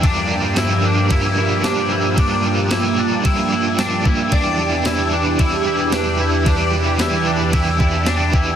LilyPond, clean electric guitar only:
\new Staff \with { instrumentName = "Clean electric guitar" } { \time 4/4 \key g \dorian \tempo 4 = 112 d'4 e'8 d'8 e'8 e'8 d'8 e'8 | d'4 e'8 d'8 e'8 e'8 d'8 e'8 | d'4 e'8 d'8 e'8 e'8 d'8 e'8 | d'4 e'8 d'8 e'8 e'8 d'8 e'8 | }